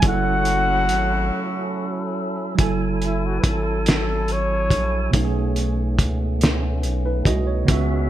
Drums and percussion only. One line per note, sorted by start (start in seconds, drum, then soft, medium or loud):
0.02 kick loud
0.02 closed hi-hat medium
0.45 closed hi-hat medium
0.89 closed hi-hat medium
2.58 kick loud
2.58 closed hi-hat medium
3.02 closed hi-hat soft
3.44 kick medium
3.44 closed hi-hat medium
3.86 snare loud
3.86 closed hi-hat medium
4.28 closed hi-hat soft
4.70 kick medium
4.70 closed hi-hat medium
5.13 kick loud
5.13 closed hi-hat medium
5.56 closed hi-hat medium
5.99 kick medium
5.99 closed hi-hat medium
6.41 snare loud
6.41 closed hi-hat medium
6.83 closed hi-hat soft
7.25 kick medium
7.25 closed hi-hat medium
7.68 kick loud
7.68 closed hi-hat medium